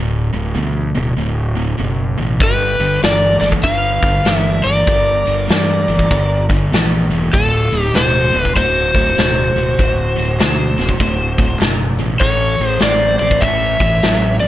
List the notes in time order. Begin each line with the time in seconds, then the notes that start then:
Already playing: D1 D2 A2
0.33 D1 D2 A2
0.55 D2 B2
0.95 D1 D2 B2
1.17 D1 D2 A2
1.55 D2 A2
1.78 F#1 D2 B2
2.17 A1 D2 B2
2.40 G1 G2 D3 G4 B4, kick, closed hi-hat
2.79 G1 G2 D3, closed hi-hat
3.03 G1 G2 E3 D5, snare, closed hi-hat
3.07 A#4
3.40 G1 G2 E3 D5, snare, closed hi-hat
3.47 A4
3.52 kick
3.63 G1 G2 D3 B4 F5, kick, closed hi-hat
4.02 G1 G2 D3, kick, closed hi-hat
4.25 G1 G2 E3, snare, closed hi-hat
4.31 A#4 E5
4.62 G1 G2 E3 D5, closed hi-hat
4.66 A#4
4.87 G1 G2 D3, kick, closed hi-hat
5.25 G1 G2 D3, closed hi-hat
5.48 G2 E3, snare, closed hi-hat
5.88 G1 G2 E3, closed hi-hat
5.99 kick
6.10 G1 G2 D3, kick, closed hi-hat
6.49 G2 D3, kick, closed hi-hat
6.72 A#1 G2 E3, snare, closed hi-hat
7.10 E1 G2 E3, closed hi-hat
7.32 D1 D2 A2 F4 A4, kick, closed hi-hat
7.71 D1 D2 A2, closed hi-hat
7.78 D#4
7.82 G4
7.94 D1 D2 B2 F#4 C5, snare, closed hi-hat
8.32 D1 D2 B2, closed hi-hat
8.37 F4 B4
8.45 kick
8.55 D1 D2 A2 F#4 C5, kick, closed hi-hat
8.94 D1 D2 A2, kick, closed hi-hat
9.17 D1 D2 B2, snare, closed hi-hat
9.55 D1 D2 B2, closed hi-hat
9.77 D1 D2 A2, kick, closed hi-hat
10.16 D1 D2 A2, closed hi-hat
10.39 D2 B2, snare, closed hi-hat
10.78 D1 D2 B2, snare, closed hi-hat
10.89 kick
11.00 D1 D2 A2, kick, closed hi-hat
11.38 D2 A2, kick, closed hi-hat
11.60 F#1 D2 B2, snare, closed hi-hat
11.98 A1 D2 B2, closed hi-hat
12.20 A1 A2 E3 A4 C#5, kick, closed hi-hat
12.58 A1 A2 E3, closed hi-hat
12.63 G#4 C5
12.80 A1 A2 C5 D5, snare, closed hi-hat
12.84 F#3
13.19 A1 A2 F#3 C5 D5, closed hi-hat
13.31 kick
13.41 A1 A2 E3 C#5 E5, kick, closed hi-hat
13.79 A1 A2 E3, kick, closed hi-hat
14.02 A1 A2 F#3, snare, closed hi-hat
14.40 A1 A2 F#3 D5, closed hi-hat